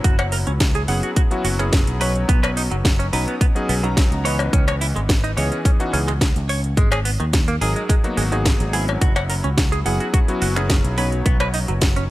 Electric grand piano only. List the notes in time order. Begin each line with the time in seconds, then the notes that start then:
Already playing: F#3 B3 C#4 E4
0.88 F#3 B3 C#4 E4 G#4
1.31 F#3 B3 C#4 E4 F#4
1.59 F#3 B3 C#4 E4 G#4
2.00 F#3 B3 C#4 D#4 C#5
3.13 F#3 B3 C#4 D#4 A#5
3.55 F#3 B3 C#4 D#4 G#4
3.83 F#3 B3 C#4 D#4 A#5
4.24 E3 B3 C#4 B4 D#5
5.36 E3 B3 C#4 G#4 D#5
5.79 E3 B3 C#4 D#4 F#4
5.93 E3 B3 C#4 D#4 G#4
7.61 F#3 D#4 G#4 A#4
8.04 F#3 A#3 B3 D#4 F#4
8.32 F#3 A#3 B3 D#4 G#4
8.73 F#3 B3 C#4 E4
9.85 F#3 B3 C#4 E4 G#4
10.28 F#3 B3 C#4 E4 F#4
10.56 F#3 B3 C#4 E4 G#4
10.97 F#3 B3 C#4 D#4 C#5